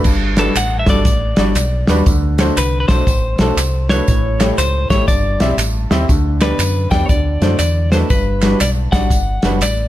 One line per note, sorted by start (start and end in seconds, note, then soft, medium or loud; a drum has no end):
0.04 0.48 G1 medium
0.04 0.83 G2 medium
0.04 kick medium
0.04 crash medium
0.04 tambourine medium
0.37 0.50 G3 medium
0.37 0.50 D4 medium
0.37 0.51 F#4 medium
0.37 0.57 A4 medium
0.37 0.51 B4 medium
0.37 snare loud
0.37 clap medium
0.37 closed hi-hat medium
0.37 tambourine soft
0.55 0.83 A1 medium
0.55 0.79 F#5 medium
0.55 clap medium
0.55 closed hi-hat medium
0.55 tambourine medium
0.79 0.88 E5 medium
0.86 1.03 G1 medium
0.86 1.00 G3 medium
0.86 1.00 D4 medium
0.86 1.01 F#4 medium
0.86 1.01 A4 medium
0.86 1.85 D5 medium
0.86 kick medium
0.86 snare loud
0.86 closed hi-hat medium
0.86 tambourine medium
1.05 1.33 A1 medium
1.05 kick loud
1.05 closed hi-hat medium
1.05 tambourine medium
1.36 1.53 G1 medium
1.36 1.51 G3 medium
1.36 1.51 D4 medium
1.36 1.51 F#4 medium
1.36 1.51 D5 medium
1.36 snare loud
1.36 closed hi-hat medium
1.36 tambourine soft
1.55 1.83 B1 medium
1.55 clap medium
1.55 closed hi-hat medium
1.55 tambourine medium
1.87 2.04 D#2 medium
1.87 2.01 G3 medium
1.87 2.01 D4 medium
1.87 2.02 F#4 medium
1.87 2.02 B4 medium
1.87 snare medium
1.87 closed hi-hat medium
1.87 tambourine medium
2.06 2.49 D2 loud
2.06 2.85 D3 medium
2.06 kick loud
2.06 closed hi-hat medium
2.06 tambourine medium
2.38 2.52 A3 medium
2.38 2.52 D4 medium
2.38 2.52 F#4 medium
2.38 2.52 C5 loud
2.38 snare loud
2.38 clap medium
2.38 closed hi-hat medium
2.38 tambourine medium
2.57 2.84 C2 medium
2.57 2.79 B4 medium
2.57 clap loud
2.57 closed hi-hat medium
2.57 tambourine medium
2.80 2.88 B4 medium
2.88 3.04 B1 medium
2.88 3.02 A3 medium
2.88 3.02 D4 medium
2.88 3.02 F#4 medium
2.88 3.90 C5 medium
2.88 3.02 C5 medium
2.88 kick medium
2.88 snare loud
2.88 closed hi-hat medium
2.88 tambourine medium
3.07 3.34 A1 medium
3.07 kick loud
3.07 closed hi-hat medium
3.07 tambourine medium
3.38 3.55 B1 medium
3.38 3.53 A3 medium
3.38 3.53 D4 medium
3.38 3.53 F#4 medium
3.38 3.53 A4 medium
3.38 snare loud
3.38 closed hi-hat medium
3.38 tambourine soft
3.57 4.00 C2 medium
3.57 clap medium
3.57 closed hi-hat medium
3.57 tambourine medium
3.89 4.03 A3 medium
3.89 4.03 D4 medium
3.89 4.04 F#4 medium
3.89 4.04 B4 medium
3.89 4.58 C#5 medium
3.89 snare loud
3.89 closed hi-hat medium
3.89 tambourine medium
4.08 4.51 A1 medium
4.08 4.87 A2 medium
4.08 kick loud
4.08 closed hi-hat medium
4.08 tambourine medium
4.40 4.53 A3 medium
4.40 4.53 E4 medium
4.40 4.53 G4 medium
4.40 4.53 C#5 medium
4.40 snare loud
4.40 clap medium
4.40 closed hi-hat medium
4.40 tambourine medium
4.58 4.85 C#2 medium
4.58 4.90 C5 medium
4.58 clap medium
4.58 closed hi-hat medium
4.58 tambourine medium
4.90 5.06 A1 medium
4.90 5.03 A3 medium
4.90 5.03 E4 medium
4.90 5.04 G4 medium
4.90 5.07 C#5 medium
4.90 5.04 C#5 medium
4.90 kick medium
4.90 snare loud
4.90 closed hi-hat medium
4.90 tambourine medium
5.08 5.36 G1 loud
5.08 5.87 G2 medium
5.08 5.55 D5 medium
5.08 kick loud
5.08 closed hi-hat medium
5.08 tambourine medium
5.40 5.56 B1 medium
5.40 5.53 C4 medium
5.40 5.54 E4 medium
5.40 5.54 G4 medium
5.40 5.54 E5 medium
5.40 snare loud
5.40 closed hi-hat medium
5.40 tambourine soft
5.57 5.85 A1 medium
5.57 clap medium
5.57 closed hi-hat medium
5.57 tambourine medium
5.91 6.06 D#2 medium
5.91 6.03 C4 medium
5.91 6.04 E4 medium
5.91 6.04 G4 medium
5.91 6.04 E5 medium
5.91 snare loud
5.91 closed hi-hat medium
5.91 tambourine medium
6.09 6.52 D2 medium
6.09 6.88 D3 medium
6.09 kick loud
6.09 closed hi-hat medium
6.09 tambourine medium
6.41 6.54 B3 medium
6.41 6.54 D4 medium
6.41 6.54 G4 medium
6.41 6.91 B4 medium
6.41 6.54 D5 medium
6.41 snare loud
6.41 clap medium
6.41 closed hi-hat medium
6.41 tambourine soft
6.59 6.86 F#2 medium
6.59 clap medium
6.59 closed hi-hat medium
6.59 tambourine loud
6.91 7.07 E2 medium
6.91 7.05 B3 medium
6.91 7.05 D4 medium
6.91 7.05 G4 medium
6.91 7.05 D5 medium
6.91 7.05 G5 medium
6.91 kick medium
6.91 snare loud
6.91 closed hi-hat medium
6.91 tambourine medium
7.06 7.37 D2 medium
7.06 7.09 C#5 medium
7.06 7.58 D5 medium
7.06 kick loud
7.06 tambourine medium
7.10 7.89 D3 medium
7.10 closed hi-hat medium
7.42 7.57 F#2 medium
7.42 7.55 A3 medium
7.42 7.55 D4 medium
7.42 7.55 F#4 medium
7.42 7.55 C5 medium
7.42 snare loud
7.42 closed hi-hat medium
7.42 tambourine soft
7.59 8.02 E2 medium
7.59 7.92 D5 medium
7.59 clap medium
7.59 closed hi-hat medium
7.59 tambourine medium
7.92 8.05 A3 medium
7.92 8.06 D4 medium
7.92 8.06 F#4 medium
7.92 8.06 B4 medium
7.92 7.97 C5 medium
7.92 snare medium
7.92 closed hi-hat medium
7.92 tambourine medium
8.10 8.53 G1 loud
8.10 8.90 G2 medium
8.10 8.61 B4 medium
8.10 kick loud
8.10 closed hi-hat medium
8.10 tambourine medium
8.42 8.56 G3 medium
8.42 8.56 D4 medium
8.42 8.56 F#4 medium
8.42 8.56 B4 medium
8.42 snare loud
8.42 clap medium
8.42 closed hi-hat medium
8.42 tambourine soft
8.60 8.88 B1 medium
8.60 8.70 D5 medium
8.60 clap medium
8.60 closed hi-hat medium
8.60 tambourine medium
8.92 9.08 A1 medium
8.92 9.06 G3 medium
8.92 9.06 D4 medium
8.92 9.06 F#4 medium
8.92 9.06 D5 medium
8.92 9.63 F#5 medium
8.92 kick medium
8.92 snare loud
8.92 closed hi-hat medium
8.92 tambourine medium
9.10 9.38 G1 medium
9.10 kick medium
9.10 closed hi-hat medium
9.10 tambourine medium
9.42 9.59 F#1 medium
9.42 9.56 G3 medium
9.42 9.57 D4 medium
9.42 9.57 F#4 medium
9.42 9.57 B4 medium
9.42 snare loud
9.42 closed hi-hat medium
9.42 tambourine soft
9.61 9.88 A1 medium
9.61 9.88 D5 medium
9.61 clap medium
9.61 closed hi-hat medium
9.61 tambourine medium